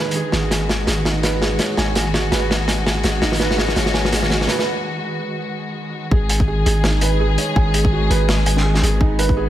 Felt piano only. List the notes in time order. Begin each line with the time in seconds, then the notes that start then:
Already playing: D#4 F#4 G#4 B4 G#5
0.15 G#4
0.33 G#4
0.51 G#5
0.69 G#4
0.87 G#4
1.06 D#4
1.23 B4
1.41 G#4
1.60 C#5
1.77 G#5
1.95 G#4
2.13 F#4
2.32 B4
2.49 G#4
2.68 G#5
2.86 G#4
3.04 G#4
3.22 D#4
3.40 B4
3.58 G#4
3.76 C#5
3.94 G#5
4.12 G#4
4.30 F#4
4.48 B4
6.12 G#4
6.30 G#5
6.48 G#4
6.66 G#4
6.84 D#4
7.02 B4
7.20 G#4
7.38 C#5
7.56 G#5
7.74 G#4
7.92 F#4
8.10 B4
8.28 G#4
8.46 G#5
8.64 G#4
8.82 G#4
9.01 D#4
9.19 B4
9.37 G#4